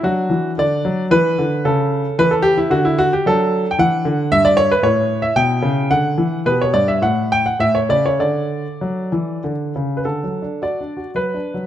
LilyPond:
<<
  \new Staff \with { instrumentName = "Grand piano" } { \time 3/4 \key a \dorian \tempo 4 = 110 << { fis'4 d''4 b'4 | a'4 b'16 a'16 g'16 e'16 fis'16 e'16 fis'16 g'16 | \key d \major a'8.~ a'32 g''32 fis''4 e''16 d''16 cis''16 b'16 | cis''8. e''16 g''4 fis''4 |
b'16 cis''16 d''16 e''16 fis''8 g''16 fis''16 e''16 cis''16 d''16 cis''16 | d''2~ d''8 r16. b'32 | a'4 d''4 b'4 | } \\ { d'2. | cis'2 r4 | d'2 r4 | e'2 r4 |
g'4 r2 | a'2. | r2. | } >> }
  \new Staff \with { instrumentName = "Grand piano" } { \clef bass \time 3/4 \key a \dorian fis8 e8 d8 fis8 e8 d8 | cis4 e4 d4 | \key d \major fis4 e8 d8 g,4 | a,4 b,8 cis8 d8 e8 |
b,8 g,8 a,4 a,8 cis8 | d4 fis8 e8 d8 cis8 | \tuplet 3/2 { d8 fis8 d'8 fis'8 d'8 fis'8 fis8 d'8 fis8 } | }
>>